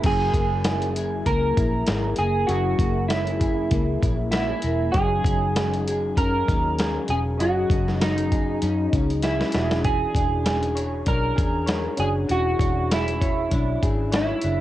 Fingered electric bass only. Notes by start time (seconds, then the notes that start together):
0.04 F#1
0.34 F#1
1.27 C#2
1.57 A#1
1.88 G#1
2.19 F#1
2.49 F#1
2.79 F#1
3.71 C#2
4.03 A#1
4.64 E1
4.95 F#1
5.24 F#1
6.17 F#2
6.49 D#2
7.09 E1
7.40 F#1
7.70 F#1
8.63 F#2
8.93 C#2
9.55 E1
10.15 E1
11.07 B1
11.38 E2
11.99 F#1
12.30 E1
12.60 E1
13.52 B1
13.83 G#1
14.44 F#1